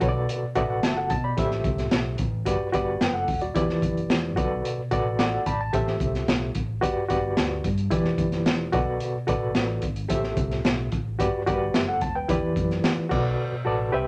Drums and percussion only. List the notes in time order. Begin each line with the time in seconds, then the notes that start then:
0.01 kick, closed hi-hat
0.29 closed hi-hat
0.55 kick, closed hi-hat
0.83 snare, closed hi-hat
1.10 kick, closed hi-hat
1.38 kick, closed hi-hat
1.51 snare
1.64 kick, closed hi-hat
1.78 snare, closed hi-hat
1.91 snare, closed hi-hat
2.18 kick, closed hi-hat
2.46 kick, closed hi-hat
2.73 kick, closed hi-hat
3.01 snare, closed hi-hat
3.28 kick, open hi-hat
3.41 closed hi-hat
3.55 kick, closed hi-hat
3.69 snare
3.82 kick, closed hi-hat
3.97 closed hi-hat
4.10 snare, closed hi-hat
4.37 kick, closed hi-hat
4.65 closed hi-hat
4.91 kick, closed hi-hat
5.19 snare, closed hi-hat
5.46 kick, closed hi-hat
5.73 kick, closed hi-hat
5.87 snare
6.00 kick, closed hi-hat
6.15 snare, closed hi-hat
6.28 snare, closed hi-hat
6.55 kick, closed hi-hat
6.83 kick, closed hi-hat
7.10 kick, closed hi-hat
7.37 snare, closed hi-hat
7.64 kick, closed hi-hat
7.78 closed hi-hat
7.91 kick, closed hi-hat
8.05 snare
8.18 kick, closed hi-hat
8.32 snare, closed hi-hat
8.46 snare, closed hi-hat
8.73 kick, closed hi-hat
9.00 closed hi-hat
9.28 kick, closed hi-hat
9.55 snare, closed hi-hat
9.82 kick, closed hi-hat
9.96 closed hi-hat
10.10 kick, closed hi-hat
10.23 snare
10.37 kick, closed hi-hat
10.51 snare, closed hi-hat
10.65 snare, closed hi-hat
10.92 kick, closed hi-hat
11.20 kick, closed hi-hat
11.47 kick, closed hi-hat
11.74 snare, closed hi-hat
12.01 kick, closed hi-hat
12.29 kick, closed hi-hat
12.56 kick, closed hi-hat
12.71 snare, closed hi-hat
12.84 snare, closed hi-hat
13.11 kick, crash